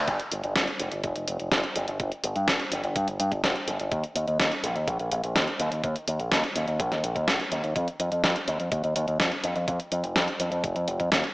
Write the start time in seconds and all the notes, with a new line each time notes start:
0.08 G1, kick, closed hi-hat
0.20 closed hi-hat
0.32 G1, closed hi-hat
0.44 G1, closed hi-hat
0.56 G1, kick, snare, closed hi-hat
0.68 closed hi-hat
0.80 F1, closed hi-hat
0.92 G1, closed hi-hat
1.04 F1, kick, closed hi-hat
1.16 F1, closed hi-hat
1.28 F1, closed hi-hat
1.40 F1, closed hi-hat
1.52 G1, kick, snare, closed hi-hat
1.64 closed hi-hat
1.76 G1, closed hi-hat
1.88 G1, closed hi-hat
2.00 G1, kick, closed hi-hat
2.12 closed hi-hat
2.24 G1, closed hi-hat
2.36 G2, closed hi-hat
2.48 G1, kick, snare, closed hi-hat
2.60 closed hi-hat
2.72 G1, closed hi-hat
2.84 G1, closed hi-hat
2.96 G2, kick, closed hi-hat
3.08 G1, closed hi-hat
3.20 G2, closed hi-hat
3.32 G1, kick, closed hi-hat
3.44 F1, kick, snare, closed hi-hat
3.56 closed hi-hat
3.68 G1, closed hi-hat
3.80 G1, closed hi-hat
3.92 D#2, kick, closed hi-hat
4.04 closed hi-hat
4.15 D#2, closed hi-hat
4.28 D#2, closed hi-hat
4.40 D#2, kick, snare, closed hi-hat
4.52 closed hi-hat
4.64 A#1, closed hi-hat
4.76 D#2, closed hi-hat
4.88 A#1, kick, closed hi-hat
5.00 A#1, closed hi-hat
5.12 A#1, closed hi-hat
5.24 A#1, closed hi-hat
5.36 D#2, kick, snare, closed hi-hat
5.48 closed hi-hat
5.60 D#2, closed hi-hat
5.71 D#2, closed hi-hat
5.84 D#2, kick, closed hi-hat
5.96 closed hi-hat
6.08 D#2, closed hi-hat
6.20 A#1, closed hi-hat
6.32 D#2, kick, snare, closed hi-hat
6.44 closed hi-hat
6.56 D#2, closed hi-hat
6.67 D#2, closed hi-hat
6.80 A#1, kick, closed hi-hat
6.92 D#2, snare, closed hi-hat
7.03 A#1, closed hi-hat
7.16 D#2, kick, closed hi-hat
7.28 A#1, kick, snare, closed hi-hat
7.40 closed hi-hat
7.52 D#2, closed hi-hat
7.64 D#2, closed hi-hat
7.76 F2, kick, closed hi-hat
7.88 closed hi-hat
8.00 F2, closed hi-hat
8.12 F2, closed hi-hat
8.24 F2, kick, snare, closed hi-hat
8.36 closed hi-hat
8.48 D#2, closed hi-hat
8.60 F2, closed hi-hat
8.72 D#2, kick, closed hi-hat
8.84 D#2, closed hi-hat
8.96 D#2, closed hi-hat
9.08 D#2, closed hi-hat
9.20 F2, kick, snare, closed hi-hat
9.32 closed hi-hat
9.44 F2, closed hi-hat
9.56 F2, closed hi-hat
9.68 F2, kick, closed hi-hat
9.80 closed hi-hat
9.92 F2, closed hi-hat
10.04 F1, closed hi-hat
10.16 F2, kick, snare, closed hi-hat
10.28 closed hi-hat
10.40 F2, closed hi-hat
10.52 F2, closed hi-hat
10.64 F1, kick, closed hi-hat
10.76 F2, closed hi-hat
10.88 F1, closed hi-hat
11.00 F2, kick, closed hi-hat
11.12 D#2, kick, snare, closed hi-hat
11.24 closed hi-hat